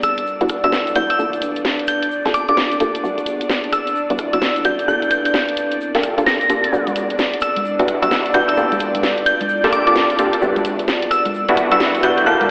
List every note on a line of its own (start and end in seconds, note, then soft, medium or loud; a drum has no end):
0.00 0.23 E2 medium
0.00 1.19 B3 medium
0.00 6.71 D4 medium
0.00 1.19 A4 medium
0.00 4.88 D5 medium
0.00 6.71 D5 medium
0.00 0.20 E6 medium
0.00 cross-stick medium
0.00 closed hi-hat loud
0.00 shaker medium
0.18 closed hi-hat medium
0.18 shaker soft
0.27 shaker soft
0.41 0.54 G3 medium
0.41 0.54 B3 medium
0.41 0.54 D4 medium
0.41 0.54 E4 medium
0.41 0.54 F#4 loud
0.41 closed hi-hat medium
0.41 shaker soft
0.49 1.15 E1 medium
0.49 cross-stick medium
0.49 closed hi-hat loud
0.49 shaker medium
0.64 0.71 G3 medium
0.64 0.71 B3 medium
0.64 0.71 D4 medium
0.64 0.71 E4 medium
0.64 0.71 F#4 loud
0.64 0.76 E6 medium
0.64 closed hi-hat medium
0.64 shaker soft
0.72 snare loud
0.72 shaker soft
0.87 closed hi-hat soft
0.87 shaker soft
0.95 1.07 G3 medium
0.95 1.07 B3 medium
0.95 1.07 D4 medium
0.95 1.07 E4 medium
0.95 1.07 F#4 loud
0.95 1.07 G6 medium
0.95 closed hi-hat loud
0.95 shaker medium
1.10 1.25 E6 medium
1.10 closed hi-hat medium
1.10 shaker soft
1.19 1.29 G1 loud
1.19 1.31 A#3 medium
1.19 3.03 C4 medium
1.19 1.31 D4 medium
1.19 1.31 F4 medium
1.19 1.31 G4 medium
1.19 1.31 A4 medium
1.19 shaker medium
1.33 closed hi-hat soft
1.33 shaker soft
1.42 2.07 G2 medium
1.42 closed hi-hat loud
1.42 shaker medium
1.55 closed hi-hat medium
1.55 shaker soft
1.65 snare loud
1.65 shaker soft
1.79 closed hi-hat soft
1.87 2.04 G6 medium
1.87 closed hi-hat loud
1.87 shaker loud
2.02 closed hi-hat medium
2.02 shaker soft
2.11 shaker medium
2.25 2.39 A#3 medium
2.25 2.39 D4 medium
2.25 2.39 F4 medium
2.25 2.39 G4 medium
2.25 2.38 A4 loud
2.25 snare medium
2.25 closed hi-hat soft
2.25 shaker soft
2.34 3.00 G1 loud
2.34 2.46 D6 medium
2.34 cross-stick medium
2.34 closed hi-hat loud
2.34 shaker medium
2.49 2.56 A#3 medium
2.49 2.56 D4 medium
2.49 2.56 F4 medium
2.49 2.56 G4 medium
2.49 2.56 A4 medium
2.49 2.80 D6 medium
2.49 closed hi-hat medium
2.49 shaker soft
2.57 snare loud
2.57 shaker medium
2.72 closed hi-hat soft
2.72 shaker soft
2.80 2.92 A#3 medium
2.80 2.92 D4 medium
2.80 2.92 F4 medium
2.80 2.92 G4 medium
2.80 2.92 A4 loud
2.80 closed hi-hat loud
2.80 shaker medium
2.95 closed hi-hat medium
2.95 shaker soft
3.03 3.14 E1 loud
3.03 3.15 G3 medium
3.03 4.88 B3 medium
3.03 3.15 B3 medium
3.03 3.15 D4 medium
3.03 3.15 E4 medium
3.03 3.15 F#4 medium
3.03 shaker medium
3.18 closed hi-hat soft
3.18 shaker soft
3.26 3.92 E2 medium
3.26 closed hi-hat loud
3.26 shaker medium
3.41 closed hi-hat medium
3.41 shaker soft
3.50 snare loud
3.50 shaker soft
3.64 closed hi-hat soft
3.72 3.89 E6 medium
3.72 cross-stick medium
3.72 closed hi-hat loud
3.72 shaker medium
3.87 closed hi-hat medium
3.87 shaker soft
3.95 shaker medium
4.10 4.23 G3 medium
4.10 4.23 B3 medium
4.10 4.23 D4 medium
4.10 4.23 E4 medium
4.10 4.23 F#4 loud
4.10 closed hi-hat soft
4.10 shaker soft
4.18 4.84 E1 loud
4.18 cross-stick medium
4.18 closed hi-hat loud
4.18 shaker loud
4.33 4.40 G3 medium
4.33 4.40 B3 medium
4.33 4.40 D4 medium
4.33 4.40 E4 medium
4.33 4.40 F#4 medium
4.33 4.45 E6 medium
4.33 closed hi-hat medium
4.33 shaker soft
4.42 snare loud
4.42 shaker medium
4.56 closed hi-hat soft
4.56 shaker soft
4.65 4.77 G3 medium
4.65 4.77 B3 medium
4.65 4.77 D4 medium
4.65 4.77 E4 medium
4.65 4.77 F#4 medium
4.65 4.77 G6 medium
4.65 closed hi-hat medium
4.65 shaker medium
4.79 closed hi-hat medium
4.79 shaker soft
4.88 4.98 G1 loud
4.88 5.00 A#3 medium
4.88 6.73 C4 medium
4.88 5.00 D4 medium
4.88 5.00 F4 medium
4.88 5.00 G4 medium
4.88 5.00 A4 medium
4.88 5.04 G6 medium
4.88 shaker medium
5.02 closed hi-hat soft
5.02 shaker soft
5.11 5.76 G2 medium
5.11 6.73 A#4 medium
5.11 5.20 G6 medium
5.11 closed hi-hat loud
5.11 shaker loud
5.15 12.51 D5 medium
5.25 5.31 G6 medium
5.25 closed hi-hat medium
5.25 shaker soft
5.34 snare loud
5.34 shaker medium
5.49 closed hi-hat medium
5.57 closed hi-hat loud
5.57 shaker medium
5.71 closed hi-hat medium
5.71 shaker soft
5.81 shaker medium
5.95 6.08 A#3 loud
5.95 6.08 D4 medium
5.95 6.08 F4 medium
5.95 6.08 G4 medium
5.95 6.08 A4 loud
5.95 snare medium
5.95 closed hi-hat medium
5.95 shaker soft
6.03 6.69 G1 medium
6.03 cross-stick medium
6.03 closed hi-hat loud
6.03 shaker loud
6.18 6.25 A#3 medium
6.18 6.25 D4 medium
6.18 6.25 F4 medium
6.18 6.25 G4 medium
6.18 6.25 A4 loud
6.18 closed hi-hat medium
6.18 shaker soft
6.26 6.78 A#6 medium
6.26 snare loud
6.26 shaker medium
6.41 closed hi-hat soft
6.41 shaker soft
6.49 6.61 A#3 medium
6.49 6.61 D4 medium
6.49 6.61 F4 medium
6.49 6.61 G4 medium
6.49 6.61 A4 loud
6.49 closed hi-hat loud
6.49 shaker medium
6.64 closed hi-hat medium
6.64 shaker soft
6.72 6.83 E1 loud
6.72 6.84 G3 medium
6.72 6.84 B3 medium
6.72 8.57 B3 medium
6.72 12.51 D4 medium
6.72 6.84 D4 medium
6.72 6.84 E4 medium
6.72 6.84 F#4 medium
6.72 12.51 D5 medium
6.72 shaker medium
6.87 closed hi-hat soft
6.87 high conga medium
6.87 shaker soft
6.95 7.61 E2 medium
6.95 8.57 A4 medium
6.95 closed hi-hat loud
6.95 shaker medium
7.09 8.57 E4 medium
7.09 closed hi-hat medium
7.09 shaker soft
7.18 snare loud
7.18 shaker medium
7.33 closed hi-hat medium
7.41 7.58 E6 medium
7.41 cross-stick medium
7.41 closed hi-hat loud
7.41 shaker medium
7.56 closed hi-hat medium
7.56 high conga medium
7.56 shaker soft
7.65 shaker medium
7.79 7.92 G3 medium
7.79 7.92 B3 medium
7.79 7.92 D4 medium
7.79 7.92 E4 medium
7.79 7.92 F#4 loud
7.79 closed hi-hat soft
7.79 shaker soft
7.88 8.53 E1 medium
7.88 cross-stick medium
7.88 closed hi-hat loud
7.88 shaker medium
8.02 8.09 G3 medium
8.02 8.09 B3 medium
8.02 8.09 D4 medium
8.02 8.09 E4 medium
8.02 8.09 F#4 loud
8.02 8.14 E6 loud
8.02 closed hi-hat medium
8.02 shaker soft
8.11 snare loud
8.11 shaker medium
8.25 closed hi-hat soft
8.25 shaker soft
8.34 8.46 G3 medium
8.34 8.46 B3 medium
8.34 8.46 D4 medium
8.34 8.46 E4 medium
8.34 8.46 F#4 loud
8.34 8.46 G6 medium
8.34 closed hi-hat loud
8.34 shaker medium
8.48 8.63 E6 medium
8.48 closed hi-hat medium
8.48 shaker soft
8.57 8.68 G1 loud
8.57 8.69 A#3 medium
8.57 10.42 C4 medium
8.57 8.69 D4 medium
8.57 8.69 F4 medium
8.57 8.69 G4 medium
8.57 8.69 A4 medium
8.57 shaker medium
8.71 closed hi-hat soft
8.71 high conga medium
8.71 shaker soft
8.76 10.42 F4 medium
8.80 9.46 G2 medium
8.80 closed hi-hat loud
8.80 shaker medium
8.95 closed hi-hat medium
8.95 high conga medium
8.95 shaker soft
9.03 snare loud
9.03 shaker soft
9.18 closed hi-hat medium
9.26 9.43 G6 medium
9.26 closed hi-hat loud
9.26 shaker medium
9.40 closed hi-hat medium
9.40 high conga medium
9.40 shaker soft
9.49 shaker medium
9.64 9.77 A#3 medium
9.64 9.77 D4 medium
9.64 9.77 F4 medium
9.64 9.77 G4 medium
9.64 9.77 A4 loud
9.64 snare medium
9.64 closed hi-hat medium
9.64 shaker soft
9.72 10.38 G1 medium
9.72 9.84 D6 loud
9.72 cross-stick medium
9.72 closed hi-hat loud
9.72 shaker medium
9.87 9.94 A#3 medium
9.87 9.94 D4 medium
9.87 9.94 F4 medium
9.87 9.94 G4 medium
9.87 9.94 A4 medium
9.87 10.19 D6 medium
9.87 closed hi-hat medium
9.87 shaker soft
9.95 snare loud
9.95 shaker medium
10.10 closed hi-hat soft
10.10 shaker soft
10.18 10.31 A#3 medium
10.18 10.31 D4 medium
10.18 10.31 F4 medium
10.18 10.31 G4 medium
10.18 10.31 A4 loud
10.18 closed hi-hat loud
10.18 shaker medium
10.33 closed hi-hat medium
10.33 shaker soft
10.42 10.52 E1 loud
10.42 10.54 G3 medium
10.42 10.54 B3 medium
10.42 12.27 B3 medium
10.42 10.54 D4 medium
10.42 10.54 E4 medium
10.42 10.54 F#4 medium
10.42 shaker medium
10.56 closed hi-hat soft
10.56 high conga medium
10.56 shaker soft
10.65 11.30 E2 medium
10.65 12.27 A4 medium
10.65 closed hi-hat loud
10.65 shaker medium
10.79 closed hi-hat medium
10.79 shaker soft
10.88 snare loud
10.88 shaker medium
11.02 closed hi-hat medium
11.11 11.27 E6 medium
11.11 cross-stick medium
11.11 closed hi-hat loud
11.11 shaker medium
11.25 closed hi-hat medium
11.25 high conga medium
11.25 shaker soft
11.34 shaker soft
11.48 11.62 G3 medium
11.48 11.62 B3 medium
11.48 11.62 D4 medium
11.48 11.62 E4 medium
11.48 11.62 F#4 loud
11.48 closed hi-hat medium
11.48 shaker soft
11.57 12.23 E1 loud
11.57 cross-stick medium
11.57 closed hi-hat loud
11.57 shaker loud
11.71 11.79 G3 medium
11.71 11.79 B3 medium
11.71 11.79 D4 medium
11.71 11.79 E4 medium
11.71 11.79 F#4 loud
11.71 11.83 E6 loud
11.71 closed hi-hat medium
11.71 shaker soft
11.80 snare loud
11.80 shaker soft
11.95 closed hi-hat soft
11.95 shaker soft
12.03 12.15 G3 loud
12.03 12.15 B3 medium
12.03 12.15 D4 medium
12.03 12.15 E4 medium
12.03 12.15 F#4 loud
12.03 12.15 G6 medium
12.03 closed hi-hat loud
12.03 shaker medium
12.18 closed hi-hat medium
12.18 shaker soft
12.26 12.37 G1 loud
12.26 12.38 A#3 medium
12.26 12.38 D4 medium
12.26 12.38 F4 medium
12.26 12.38 G4 medium
12.26 12.38 A4 medium
12.26 12.43 G6 medium
12.26 shaker soft
12.41 closed hi-hat soft
12.41 high conga medium
12.41 shaker soft